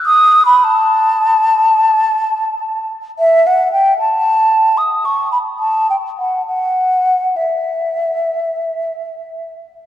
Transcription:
X:1
M:4/4
L:1/16
Q:1/4=74
K:Ador
V:1 name="Flute"
^d'2 b a12 z | (3e2 f2 g2 a4 (3^d'2 ^c'2 b2 (3a2 g2 f2 | f4 e8- e2 z2 |]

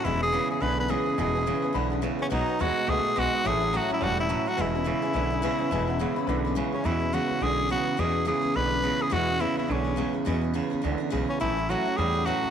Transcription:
X:1
M:4/4
L:1/8
Q:"Swing" 1/4=211
K:E
V:1 name="Upright piano"
[Beg] [Beg] [Beb] [Beg] [Beg] [Bg] [Beg] [Beg] | [Beg] [Beg] [Beg] [Beg] [Beb] [Bef] [Beg] [Bef] | [Bdf] [Bdg] [Bdf] [Bdf] [Bdf] [Bdf] [Bdg] [Bdf] | [cea] [cea] [ca] [cea] [cea] [ca] [cea] [cea] |
[Beg] [Bg] [Beg] [Beg] [Beg] [Beg] [Beg] [Beg] | [Beg] [Bef] [Bef] [Beb] [Beb] [Beb] [eg] [Beg] | z8 | z8 |
z8 | z8 | z8 |]
V:2 name="Tenor saxophone"
E G2 G B B G2 | G4 z3 C | D2 F2 G2 F2 | G2 F E F E2 F |
E8- | E6 z C | E2 F2 G2 F2 | G2 G2 B3 G |
F2 E E C3 z | z6 z C | E2 F2 G2 F2 |]
V:3 name="Steel-string acoustic guitar"
[E,G,B,CG] [B,CG] [E,G,B,CG] [B,CG] [G,B,CG] [B,CG] [E,G,B,CG] [B,CG] | [E,G,B,CG] [B,CG] [E,G,B,CG] [B,CG] [G,B,CG] [B,CG] [E,G,B,CG] [B,CG] | [B,,G,B,DF] [B,DF] [B,,G,B,DF] [B,DF] [G,B,DF] [B,DF] [B,,G,B,DF] [B,DF] | [A,,E,F,A,CF] [F,A,CF] [A,,E,F,A,CF] [F,A,CF] [F,A,CF] [F,A,CF] [A,,E,F,A,CF] [F,A,CF] |
[E,G,B,CG] [B,CG] [E,G,B,CG] [B,CG] [G,B,CG] [B,CG] [E,G,B,CG] [B,CG] | [E,G,B,CG] [B,CG] [E,G,B,CG] [B,CG] [G,B,CG] [B,CG] [E,G,B,CG] [B,CG] | [E,G,B,CG] [B,CG] [E,G,B,CG] [B,CG] [G,B,CG] [B,CG] [E,G,B,CG] [B,CG] | [E,G,B,CG] [B,CG] [E,G,B,CG] [B,CG] [G,B,CG] [B,CG] [E,G,B,CG] [B,G] |
[E,G,B,CG] [B,C] [E,G,B,CG] [B,CG] [G,B,CG] [B,CG] [E,G,B,CG] [B,CG] | [E,G,B,CG] [B,CG] [E,G,B,CG] [B,CG] [G,B,CG] [B,CG] [E,G,B,CG] [B,CG] | [A,,E,F,A,CF] [F,A,CF] [A,,E,F,A,CF] [F,A,CF] [F,A,F] [F,A,CF] [A,,E,F,A,CF] [F,A,CF] |]
V:4 name="Clean electric guitar" clef=bass
[E,,B,,]2 [E,,C,]2 [E,,=D,]2 [E,,C,]2 | [E,,B,,]2 [E,,C,]2 [E,,=D,]2 [E,,C,]2 | [B,,F,]2 [B,,G,]2 [B,,A,]2 [B,,G,]2 | [A,,E,]2 [A,,F,]2 [A,,=G,]2 [A,,F,]2 |
[E,,B,,]2 [E,,C,]2 [E,,=D,]2 [E,,C,]2 | [E,,B,,]2 [E,,C,]2 [E,,=D,]2 [E,,C,]2 | [E,,B,,]2 [E,,C,]2 [E,,=D,]2 [E,,C,]2 | [E,,B,,]2 [E,,C,]2 [E,,=D,]2 [E,,C,]2 |
[E,,B,,]2 [E,,C,]2 [E,,=D,]2 [E,,C,]2 | [E,,B,,]2 [E,,C,]2 [E,,=D,]2 [E,,C,]2 | [A,,E,]2 [A,,F,]2 [A,,=G,]2 [A,,F,]2 |]
V:5 name="Upright bass" clef=bass
E,,,3 z B,,,3 z | E,,,3 z B,,,3 z | B,,, z D,, z C,, z B,,, z | A,,,3 z E,,,3 z |
E,,,3 z B,,,3 z | E,,,3 z B,,,3 z | E,,3 z B,,,3 z | E,,3 z B,,,3 z |
E,,3 z B,,,3 z | E,,3 z C,, z B,,, z | A,,,3 z E,,3 z |]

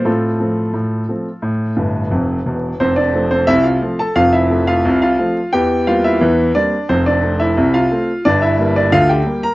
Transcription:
X:1
M:2/4
L:1/16
Q:1/4=88
K:F
V:1 name="Grand piano"
[CFA]8- | [CFA]4 z4 | [Cc] [Dd]2 [Cc] [Ee] [Ff]2 [Aa] | [Ff] [Ee]2 [Ff]2 [Ff]3 |
[Gg]2 [Ff] [Ee]3 [Dd]2 | [Cc] [Dd]2 [Ee]2 [Ff]3 | [Dd] [Ee]2 [Dd] [Ff] [Gg]2 [Bb] |]
V:2 name="Grand piano" clef=bass
A,,2 [F,A,C]2 A,,2 [F,A,C]2 | A,,2 [G,,,G,,]2 [F,,,F,,]2 [E,,,E,,]2 | [F,,,F,,]2 [F,A,C]2 [C,,C,]2 [F,A,C]2 | [F,,,F,,]2 [F,A,C]2 [C,,C,]2 [F,A,C]2 |
[E,,E,]2 [G,B,C]2 [E,,E,]2 [G,B,C]2 | [F,,,F,,]2 [A,C]2 [C,,C,]2 [A,C]2 | [G,,,G,,]2 [G,B,]2 [D,,D,]2 [G,B,]2 |]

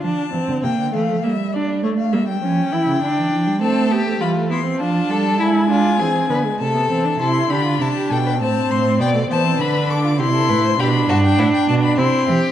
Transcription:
X:1
M:3/4
L:1/16
Q:1/4=100
K:Dm
V:1 name="Violin"
a4 g2 f2 e2 d2 | ^c f e g8- g | a4 =b2 c'2 a4 | ^g8 a4 |
[K:C] c'2 b2 a2 g2 a2 c'2 | g2 a2 b2 d'2 c'4 | b2 a g ^f g a b c'4 |]
V:2 name="Violin"
z12 | z12 | A2 G2 F2 E2 F2 A2 | E2 F2 ^G2 =B2 A4 |
[K:C] A2 G F E G A B c4 | d2 c2 B2 A F G A B c | G2 ^F2 E2 D2 E2 G2 |]
V:3 name="Viola"
D2 C2 B,2 A,2 B,2 D2 | A,2 B,2 ^C2 E2 D4 | C2 =B, A, G, A, B, C D4 | E2 D2 C2 =B, ^G, A, B, C D |
[K:C] E2 D6 C4 | B, A, B, C D4 E4 | D8 C4 |]
V:4 name="Cello" clef=bass
F,2 E, D, C, D, E, F, G,4 | A,2 G,2 F,2 E, ^C, D, E, F, G, | A,4 E,4 F,2 G,2 | ^G,4 E,2 D,2 C,2 E,2 |
[K:C] C,2 D,2 C,2 B,,2 A,,2 A,,2 | B,,2 E,2 D,4 C,2 A,,2 | B,,2 G,,2 A,,2 B,,2 C,2 E,2 |]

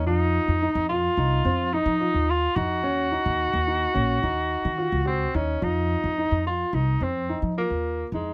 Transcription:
X:1
M:5/4
L:1/16
Q:1/4=108
K:Ebdor
V:1 name="Grand piano"
F4 E2 F2 E2 C2 E2 F4 E2 | D2 E4 E2 D2 E4 F2 G2 E2 | F4 E2 F2 E2 C2 E2 F4 E2 |]
V:2 name="Tenor saxophone"
E6 F6 E4 F2 G2- | G16 C2 D2 | E6 F2 E2 C4 B,4 A,2 |]
V:3 name="Upright bass" clef=bass
F,,3 F,,2 F,,3 C,,2 F,,3 F,2 E,,3 F,,2 | E,,3 E,,2 E,,3 B,,,2 E,,3 E,2 D,,3 E,,2 | F,,3 F,,2 F,,3 C,,2 F,,3 F,2 E,,3 F,,2 |]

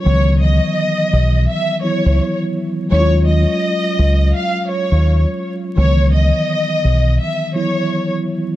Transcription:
X:1
M:4/4
L:1/16
Q:"Swing 16ths" 1/4=84
K:Dbdor
V:1 name="Violin section"
d2 e6 f2 d3 z3 | d2 e6 =f2 d3 z3 | d2 e6 f2 d3 z3 |]
V:2 name="Tine electric piano" clef=bass
[E,F,G,C]8- [E,F,G,C]2 [F,G,CF]6 | [G,A,DF=F]16 | [E,F,G,C]8- [E,F,G,C]2 [F,G,CF]6 |]
V:3 name="Fingered electric bass" clef=bass
D,,3 z3 C,,2 z3 D,, z4 | E,,3 z3 D,,2 z3 E,,2 z3 | D,,3 z3 C,,2 z8 |]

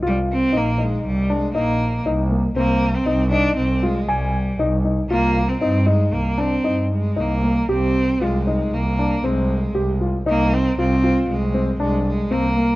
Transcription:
X:1
M:5/4
L:1/16
Q:1/4=117
K:Cm
V:1 name="Grand piano"
F4 E2 E4 D2 E4 E2 B,2 | C4 E2 E4 F2 a4 E2 E2 | F4 E2 E4 D2 E4 E2 B,2 | G4 F2 E4 D2 C4 G2 F2 |
E4 F2 F4 C2 D4 C2 B,2 |]
V:2 name="Cello"
G,2 C2 B,2 A,2 G,2 A,2 B,4 z4 | B,3 C3 D2 C2 A,2 G,4 z4 | B,3 C C2 A,2 B,2 C4 A,2 B,4 | C4 A,4 B,4 A,6 z2 |
B,2 C2 C4 A,4 A,2 A,2 B,4 |]
V:3 name="Double bass" clef=bass
C,,4 B,,,4 C,,4 B,,,4 C,,4 | C,,4 C,,4 C,,4 C,,4 C,,4 | C,,4 G,,4 C,,4 G,,4 C,,4 | C,,4 C,,4 C,,4 C,,4 C,,4 |
C,,4 C,,4 C,,4 C,,4 C,,4 |]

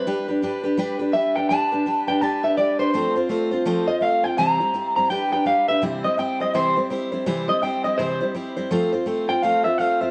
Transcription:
X:1
M:4/4
L:1/8
Q:"Swing" 1/4=166
K:C
V:1 name="Clean electric guitar"
B z4 z e g | a3 g a e d c- | c z4 _e f g | _b3 b g g f e |
z _e g e c z3 | z _e g e c z3 | z3 g f e f e |]
V:2 name="Steel-string acoustic guitar"
[G,DGB] [DGB] [G,DGB] [DGB] [G,DGB] [DGB] [G,DGB] [DGB] | [G,DGB] [DGB] [G,DGB] [DGB] [G,DGB] [DGB] [G,DGB] [DGB] | [F,A,CFc] [CFc] [A,CFc] [CFc] [F,A,CFc] [CFc] [A,CFc] [CFc] | [C,E,G,CEc] [G,CEc] [G,CEc] [G,CEc] [G,DGB] [DGB] [G,DGB] [DGB] |
[C,E,G,CEc] [G,CEc] [G,CEc] [G,CEc] [C,E,G,CEc] [G,CEc] [G,CEc] [G,CEc] | [C,E,G,CEc] [G,CEc] [G,CEc] [G,CEc] [C,E,G,CEc] [G,CEc] [G,CEc] [G,CEc] | [F,A,CFc] [CFc] [A,CFc] [CFc] [F,A,CFc] [CFc] [A,CFc] [CFc] |]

